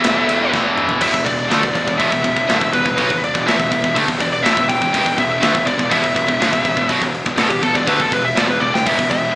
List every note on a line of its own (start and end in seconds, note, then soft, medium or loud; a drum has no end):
0.00 0.50 E2 medium
0.00 1.00 E2 loud
0.00 0.51 B2 medium
0.00 1.01 B2 loud
0.00 0.50 E3 medium
0.00 1.01 E3 medium
0.00 1.02 E3 loud
0.00 1.01 B3 medium
0.00 0.97 D4 medium
0.00 1.01 G4 medium
0.00 0.51 E5 medium
0.00 ride loud
0.05 0.23 E1 loud
0.05 snare loud
0.29 0.48 E1 medium
0.29 ride medium
0.51 0.90 E1 medium
0.51 1.00 E2 medium
0.51 1.00 B2 medium
0.51 1.01 E3 medium
0.51 kick medium
0.51 snare medium
0.78 mid tom medium
0.89 floor tom loud
1.01 1.14 E1 medium
1.01 1.10 E2 medium
1.01 1.11 B2 loud
1.01 1.25 E5 medium
1.01 kick loud
1.01 crash loud
1.01 crash medium
1.12 1.26 E1 medium
1.12 1.23 E2 medium
1.12 1.24 B2 medium
1.12 kick medium
1.24 1.49 E1 medium
1.24 1.45 E2 medium
1.24 1.45 B2 medium
1.24 1.97 D5 medium
1.24 kick medium
1.24 crash medium
1.48 1.63 D2 medium
1.48 1.61 D3 medium
1.48 1.62 A3 loud
1.48 snare loud
1.48 crash medium
1.61 1.75 E1 medium
1.61 1.72 E2 medium
1.61 1.72 B2 medium
1.61 kick medium
1.73 1.87 E1 medium
1.73 1.84 E2 medium
1.73 1.84 B2 medium
1.73 kick medium
1.73 crash medium
1.85 1.99 E1 medium
1.85 1.97 E2 medium
1.85 1.97 B2 medium
1.85 kick medium
1.98 2.11 E1 loud
1.98 2.10 E2 medium
1.98 2.11 B2 loud
1.98 2.70 E5 medium
1.98 kick loud
1.98 crash medium
2.11 2.23 E1 medium
2.11 2.21 E2 medium
2.11 2.22 B2 medium
2.11 kick medium
2.23 2.36 E1 medium
2.23 2.34 E2 medium
2.23 2.35 B2 medium
2.23 kick medium
2.23 crash medium
2.36 2.49 E1 medium
2.36 2.47 E2 medium
2.36 2.48 B2 medium
2.36 kick medium
2.47 2.61 G1 medium
2.47 2.60 G2 loud
2.47 2.60 D3 loud
2.47 snare loud
2.47 crash medium
2.60 2.73 E1 medium
2.60 2.71 E2 medium
2.60 2.72 B2 medium
2.60 kick medium
2.73 2.85 E1 medium
2.73 2.84 E2 medium
2.73 2.85 B2 medium
2.73 3.21 B4 medium
2.73 kick medium
2.73 crash medium
2.85 2.97 E1 medium
2.85 2.97 E2 medium
2.85 2.96 B2 medium
2.85 kick medium
2.97 3.10 B1 medium
2.97 3.08 B2 loud
2.97 3.09 F#3 loud
2.97 kick loud
2.97 crash medium
3.09 3.33 E1 medium
3.09 3.29 E2 medium
3.09 3.29 B2 medium
3.09 kick medium
3.24 3.47 D5 loud
3.24 crash medium
3.34 3.46 E1 medium
3.34 3.45 E2 medium
3.34 3.46 B2 medium
3.34 kick loud
3.47 3.58 E1 loud
3.47 3.58 E2 medium
3.47 3.58 B2 loud
3.47 3.94 E5 loud
3.47 snare loud
3.47 crash medium
3.59 3.71 E1 medium
3.59 3.70 E2 medium
3.59 3.71 B2 medium
3.59 kick medium
3.71 3.83 E1 medium
3.71 3.83 E2 medium
3.71 3.83 B2 medium
3.71 kick medium
3.71 crash medium
3.84 3.95 E1 medium
3.84 3.96 E2 medium
3.84 3.95 B2 medium
3.84 kick loud
3.95 4.08 D2 loud
3.95 4.07 D3 medium
3.95 4.08 A3 medium
3.95 kick medium
3.95 crash medium
4.08 4.19 E1 medium
4.08 4.19 E2 medium
4.08 4.20 B2 medium
4.08 kick medium
4.20 4.43 E1 medium
4.20 4.40 E2 medium
4.20 4.40 B2 medium
4.20 4.32 D5 medium
4.20 kick medium
4.20 crash medium
4.33 4.43 D5 medium
4.43 4.56 E1 medium
4.43 4.55 E2 loud
4.43 4.55 B2 loud
4.43 4.67 E5 loud
4.43 snare loud
4.43 crash medium
4.56 4.69 E1 medium
4.56 4.69 E2 medium
4.56 4.69 B2 medium
4.56 kick medium
4.69 4.81 E1 medium
4.69 4.80 E2 medium
4.69 4.82 B2 medium
4.69 5.16 G5 medium
4.69 kick medium
4.69 crash medium
4.82 4.93 E1 medium
4.82 4.92 E2 medium
4.82 4.93 B2 medium
4.82 kick medium
4.93 5.06 E1 medium
4.93 5.05 E2 medium
4.93 5.05 B2 loud
4.93 kick loud
4.93 crash medium
5.06 5.17 E1 medium
5.06 5.18 E2 medium
5.06 5.18 B2 medium
5.06 kick medium
5.18 5.41 E1 medium
5.18 5.38 E2 medium
5.18 5.39 B2 medium
5.18 5.66 E5 medium
5.18 kick medium
5.18 crash medium
5.41 5.55 D2 medium
5.41 5.53 D3 loud
5.41 5.54 A3 loud
5.41 snare loud
5.41 crash medium
5.54 5.66 E1 medium
5.54 5.64 E2 medium
5.54 5.66 B2 medium
5.54 kick medium
5.66 5.79 E1 medium
5.66 5.76 E2 medium
5.66 5.77 B2 medium
5.66 5.91 D5 medium
5.66 kick medium
5.66 crash medium
5.77 5.91 E1 medium
5.77 5.88 E2 medium
5.77 5.89 B2 medium
5.77 kick medium
5.89 6.03 E1 loud
5.89 6.01 E2 loud
5.89 6.02 B2 loud
5.89 6.87 E5 medium
5.89 kick loud
5.89 crash medium
6.02 6.15 E1 medium
6.02 6.13 E2 medium
6.02 6.13 B2 medium
6.02 kick medium
6.14 6.28 E1 medium
6.14 6.25 E2 medium
6.14 6.26 B2 medium
6.14 kick medium
6.14 crash medium
6.27 6.40 E1 medium
6.27 6.39 E2 medium
6.27 6.40 B2 medium
6.27 kick medium
6.40 6.53 G1 loud
6.40 6.51 G2 medium
6.40 6.52 D3 loud
6.40 snare loud
6.40 crash medium
6.52 6.65 E1 medium
6.52 6.62 E2 medium
6.52 6.62 B2 medium
6.52 kick medium
6.63 6.77 E1 medium
6.63 6.74 E2 medium
6.63 6.75 B2 medium
6.63 kick medium
6.63 crash medium
6.75 6.89 E1 medium
6.75 6.89 E2 medium
6.75 6.87 B2 medium
6.75 kick medium
6.88 7.01 B1 medium
6.88 6.99 B2 medium
6.88 7.01 F#3 loud
6.88 kick medium
6.88 crash medium
7.00 7.25 E1 medium
7.00 7.21 E2 medium
7.00 7.21 B2 medium
7.00 kick medium
7.14 crash medium
7.26 7.38 E1 medium
7.26 7.35 E2 medium
7.26 7.36 B2 medium
7.26 kick loud
7.36 7.48 E2 loud
7.36 7.48 B2 loud
7.36 7.49 A4 loud
7.36 snare loud
7.36 crash medium
7.40 7.51 E1 medium
7.49 7.63 E1 medium
7.49 7.60 E2 medium
7.49 7.61 B2 medium
7.49 7.63 G4 medium
7.49 kick medium
7.61 7.75 E1 medium
7.61 7.73 E2 medium
7.61 7.74 B2 medium
7.61 7.75 A4 loud
7.61 kick medium
7.61 crash medium
7.75 7.87 E1 medium
7.75 7.87 E2 medium
7.75 7.87 B2 medium
7.75 7.88 D5 loud
7.75 kick medium
7.87 7.99 D2 loud
7.87 7.99 D3 medium
7.87 8.00 A3 medium
7.87 8.00 B4 loud
7.87 kick loud
7.87 crash medium
8.00 8.12 E1 medium
8.00 8.11 E2 medium
8.00 8.12 B2 medium
8.00 8.13 A4 loud
8.00 kick medium
8.12 8.35 E1 medium
8.12 8.32 E2 medium
8.12 8.32 B2 medium
8.12 8.25 B4 medium
8.12 kick medium
8.12 crash medium
8.25 8.38 E5 loud
8.36 8.48 E1 loud
8.36 8.47 E2 loud
8.36 8.47 B2 loud
8.36 8.50 D5 medium
8.36 snare loud
8.36 crash medium
8.48 8.59 E1 medium
8.48 8.60 E2 medium
8.48 8.60 B2 medium
8.48 8.60 B4 loud
8.60 8.72 E1 medium
8.60 8.72 E2 medium
8.60 8.72 B2 medium
8.60 8.73 D5 medium
8.60 high tom medium
8.73 8.85 E1 medium
8.73 8.84 E2 medium
8.73 8.85 B2 medium
8.73 8.86 G5 loud
8.73 snare loud
8.83 8.98 E1 medium
8.83 8.97 E2 loud
8.83 8.98 B2 loud
8.83 9.35 E3 medium
8.83 9.35 B3 medium
8.83 9.35 E4 medium
8.83 9.35 G4 medium
8.83 9.09 E5 loud
8.83 kick loud
8.83 crash loud
8.99 9.10 E1 medium
8.99 9.11 E2 medium
8.99 9.11 B2 medium
8.99 kick medium
9.11 9.34 E1 medium
9.11 9.31 E2 medium
9.11 9.31 B2 medium
9.11 9.35 E5 loud
9.11 kick medium
9.11 crash medium